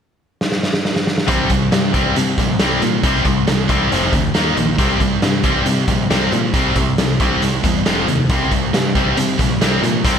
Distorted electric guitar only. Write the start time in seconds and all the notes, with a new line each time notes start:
1.28 C3 G3 C4
1.51 C3 G3
1.72 C3 G3
1.94 C3 G3 C4
2.16 C3 G3
2.40 C3 G3
2.60 C3 G3 C4
2.81 C3 G3
3.03 C3 G3 C4
3.25 C3 G3
3.47 C3 G3
3.68 C3 G3 C4
3.90 F2 C3 F3
4.13 F2 C3
4.34 D#3 A#3 D#4
4.57 D#3 A#3
4.79 C3 G3 C4
5.00 C3 G3
5.23 C3 G3
5.44 C3 G3 C4
5.66 C3 G3
5.89 C3 G3
6.10 C3 G3 C4
6.32 C3 G3
6.54 C3 G3 C4
6.75 C3 G3
6.99 C3 G3
7.20 C3 G3 C4
7.42 C3 G3
7.63 C3 G3
7.86 F2 C3 F3
8.09 F2 C3
8.31 C3 G3 C4
8.52 C3 G3
8.73 C3 G3
8.95 C3 G3 C4
9.16 C3 G3
9.38 C3 G3
9.61 C3 G3 C4
9.85 C3 G3
10.05 C3 G3 C4